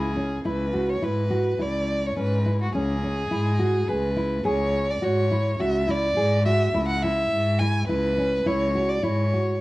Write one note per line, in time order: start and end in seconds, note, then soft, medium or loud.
0.00 0.37 C#2 medium
0.00 0.42 G#4 medium
0.16 0.37 C#4 medium
0.45 0.94 C#2 medium
0.45 0.66 E4 medium
0.45 0.91 B4 medium
0.74 0.95 F#4 medium
0.90 1.05 C#5 medium
1.02 1.51 G#2 medium
1.02 1.23 E4 medium
1.02 1.63 B4 medium
1.30 1.52 F#4 medium
1.59 2.08 C#2 medium
1.59 2.01 E4 medium
1.59 2.08 D5 medium
2.06 2.18 C#5 medium
2.16 2.65 G#2 medium
2.16 2.37 C#4 medium
2.16 2.57 B4 medium
2.46 2.66 E4 medium
2.62 2.74 F#4 medium
2.74 3.22 C#2 medium
2.74 2.95 C#4 medium
2.74 3.90 G#4 medium
3.03 3.24 C#4 medium
3.31 3.79 G#2 medium
3.31 3.52 E4 medium
3.59 3.80 F#4 medium
3.88 4.37 C#2 medium
3.88 4.09 G#4 medium
3.88 4.45 B4 medium
4.16 4.37 E4 medium
4.45 4.94 C#2 medium
4.45 4.87 G#4 medium
4.45 4.92 C#5 medium
4.90 5.05 D5 medium
5.02 5.51 G#2 medium
5.02 5.23 F#4 medium
5.02 5.62 C#5 medium
5.31 5.52 E4 medium
5.60 6.09 C#2 medium
5.60 5.81 F#4 medium
5.60 5.92 E5 medium
5.88 6.09 E4 medium
5.88 6.45 D5 medium
6.17 6.66 G#2 medium
6.17 6.38 G#4 medium
6.45 6.67 F#4 medium
6.45 6.85 E5 medium
6.74 7.23 C#2 medium
6.74 6.95 E4 medium
6.88 7.04 F#5 medium
7.02 7.45 E4 medium
7.02 7.60 E5 medium
7.32 7.81 G#2 medium
7.59 7.81 E4 medium
7.59 7.88 G#5 medium
7.88 8.38 C#2 medium
7.88 8.10 E4 medium
7.88 8.48 B4 medium
8.18 8.39 C#4 medium
8.46 8.95 C#2 medium
8.46 8.67 E4 medium
8.46 8.91 C#5 medium
8.75 8.96 F#4 medium
8.89 9.04 D5 medium
9.03 9.53 G#2 medium
9.03 9.25 E4 medium
9.03 9.60 C#5 medium
9.34 9.54 F#4 medium